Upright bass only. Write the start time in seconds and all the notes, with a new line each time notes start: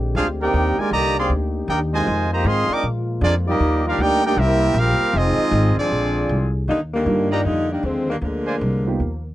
Already playing: A#1
0.15 D2
0.54 D#2
0.78 muted upright bass stroke
0.91 C2
1.29 D2
1.68 D#2
2.07 F2
2.45 G#2
2.69 muted upright bass stroke
2.83 A#2
3.21 F2
3.60 D#2
3.98 D2
4.37 C2
4.74 A#1
5.00 muted upright bass stroke
5.13 F1
5.38 muted upright bass stroke
5.51 G#1
5.76 muted upright bass stroke
5.90 A#1
6.29 C2
6.68 D#2
7.06 G2
7.45 F2
7.83 D#2
8.21 D2
8.61 C2
8.99 D#2